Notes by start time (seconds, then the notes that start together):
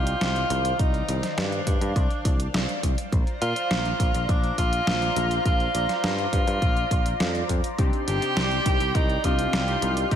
Already playing: C2 D#3 F4 C5 D5 G5
0.07 closed hi-hat
0.21 C2, snare, closed hi-hat
0.36 closed hi-hat
0.50 C2, closed hi-hat
0.65 closed hi-hat
0.79 C2 D#4 F5, kick, closed hi-hat
0.94 closed hi-hat
1.09 C2, closed hi-hat
1.23 snare, closed hi-hat
1.38 G2 D4, snare, closed hi-hat
1.52 closed hi-hat
1.67 G2, kick, closed hi-hat
1.81 G2, closed hi-hat
1.96 C2, kick, closed hi-hat
2.11 closed hi-hat
2.25 C2, kick, closed hi-hat
2.40 closed hi-hat
2.54 C2, snare, closed hi-hat
2.69 closed hi-hat
2.83 C2, kick, closed hi-hat
2.98 closed hi-hat
3.12 A#1 F4 A#5, kick, closed hi-hat
3.27 closed hi-hat
3.41 A#2 F4, closed hi-hat
3.56 closed hi-hat
3.71 A#1, snare, closed hi-hat
3.85 closed hi-hat
4.00 A#1, kick, closed hi-hat
4.14 A#1, closed hi-hat
4.29 A#1 D4, kick, closed hi-hat
4.44 closed hi-hat
4.58 A#1 F4, kick, closed hi-hat
4.73 closed hi-hat
4.87 A#1, snare, closed hi-hat
5.02 closed hi-hat
5.16 A#1, closed hi-hat
5.31 closed hi-hat
5.45 A#1 F4, kick, closed hi-hat
5.60 closed hi-hat
5.75 A#1, closed hi-hat
5.89 snare, closed hi-hat
6.04 G2 F4, snare, closed hi-hat
6.18 closed hi-hat
6.33 G2, kick, closed hi-hat
6.47 G2, closed hi-hat
6.62 A#1, kick, closed hi-hat
6.77 closed hi-hat
6.91 A#1, kick, closed hi-hat
7.06 closed hi-hat
7.20 F2, snare, closed hi-hat
7.35 closed hi-hat
7.49 F2, kick, closed hi-hat
7.64 closed hi-hat
7.78 C2 C3 C4 D4 D#4 G4 C6, kick, closed hi-hat
7.93 closed hi-hat
8.08 G1 G4, closed hi-hat
8.22 C3 C4 D4 D#4 G4, closed hi-hat
8.37 C2, snare, closed hi-hat
8.51 closed hi-hat
8.66 C2 C3 C4 D4 D#4 G4, kick, closed hi-hat
8.80 C2, closed hi-hat
8.95 C2 D#4, kick, closed hi-hat
9.10 closed hi-hat
9.24 C2 C3 C4 D4 D#4 F4 G4, kick, closed hi-hat
9.39 closed hi-hat
9.53 C2, snare, closed hi-hat
9.68 C3 C4 D4 D#4 G4, closed hi-hat
9.82 C2, closed hi-hat
9.97 closed hi-hat
10.11 C2 C3 C4 D#4 G4 D5, kick, closed hi-hat